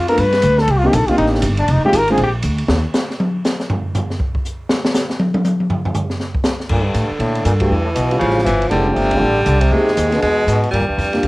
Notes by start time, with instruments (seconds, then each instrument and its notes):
Already playing: upright bass F2
0.08 grand piano A3 B3 D4 F4 A4, trombone A#4, ride
0.18 upright bass G2, trombone B4, kick, ride
0.33 snare, ride
0.42 upright bass D2, kick, hi-hat pedal, ride
0.58 trombone A4, snare
0.68 upright bass C2, trombone G4, kick, ride
0.79 trombone F4
0.84 grand piano A#3 C4 D4 D#4 G4
0.88 trombone G4
0.93 upright bass A#1, trombone A4, kick, hi-hat pedal, ride
1.08 grand piano A#3 C4 D4 D#4 G4, trombone F4, muted upright bass stroke, kick, ride
1.18 upright bass A1, trombone D#4, ride
1.26 snare
1.35 snare
1.42 upright bass G1, kick, hi-hat pedal, ride
1.57 trombone D4, ride
1.68 upright bass F1, kick, ride
1.72 trombone D#4
1.84 grand piano G#3 C4 D#4 F4 G4, trombone G4, muted upright bass stroke
1.93 upright bass G#1, kick, hi-hat pedal, ride
1.97 trombone A#4
2.08 grand piano G#3 C4 D4 F4 C5, trombone G#4, ride
2.17 upright bass A#1, kick, ride
2.23 trombone G4
2.42 upright bass D2, kick, hi-hat pedal, ride
2.58 ride
2.68 upright bass D#2, snare
2.94 snare, hi-hat pedal
3.10 snare
3.20 high tom
3.45 snare, hi-hat pedal
3.60 snare
3.70 floor tom
3.94 floor tom, hi-hat pedal
4.10 snare
4.20 kick
4.35 kick
4.45 hi-hat pedal
4.70 snare
4.85 snare
4.94 snare, hi-hat pedal
5.10 snare
5.20 high tom
5.34 high tom
5.44 hi-hat pedal, high tom
5.60 high tom
5.70 floor tom
5.85 floor tom
5.94 floor tom, hi-hat pedal
6.10 snare
6.20 snare
6.35 kick
6.43 snare, hi-hat pedal
6.60 snare
6.69 upright bass G2, trombone A#2, tenor saxophone D3, kick, crash
6.84 trombone G2
6.94 upright bass A2, kick, hi-hat pedal, ride
7.11 muted upright bass stroke
7.19 trombone A2, upright bass A#2, kick, ride
7.35 ride
7.45 upright bass G2, trombone A#2, kick, hi-hat pedal, ride
7.60 trombone G2, grand piano A3 D4 F#4 G4, kick, ride
7.71 upright bass E2, tenor saxophone E3
7.84 trombone A2
7.94 upright bass B1, trombone B2, kick, hi-hat pedal, ride
8.11 grand piano G3 C#4 E4 F4, ride
8.19 upright bass A1, trombone C#3, tenor saxophone F3, kick, ride
8.30 snare
8.38 snare
8.44 upright bass G1, trombone E3, kick, hi-hat pedal, ride
8.62 ride
8.70 upright bass F1, trombone D3, tenor saxophone G3, grand piano G#3 B3 C#4 E4, kick, ride
8.87 grand piano A3 C4 D4 F4
8.94 upright bass G1, trombone C3, kick, hi-hat pedal, ride
9.11 grand piano A3 C4 D4 F4, kick, ride
9.19 upright bass A1, trombone D3
9.44 upright bass C2, trombone D3, kick, hi-hat pedal, ride
9.61 trombone C3, kick, ride
9.71 upright bass F2, grand piano G#3 A#3 D#4 G4, tenor saxophone G#3
9.88 snare
9.95 upright bass D#2, trombone G#2, kick, hi-hat pedal, ride
10.12 trombone B2, grand piano A#3 B3 D4 G#4, snare, ride
10.22 upright bass E2, tenor saxophone G#3, kick, ride
10.47 upright bass G#2, trombone B2, kick, hi-hat pedal, ride
10.63 ride
10.71 upright bass G2, trombone A#2, tenor saxophone G3, kick, ride
10.80 upright bass D#2
10.88 upright bass D2, trombone G2
10.98 upright bass F2, kick, hi-hat pedal, ride
11.13 grand piano A#3 D4 F4 G4, snare, ride
11.23 upright bass D#2, trombone A2, kick, ride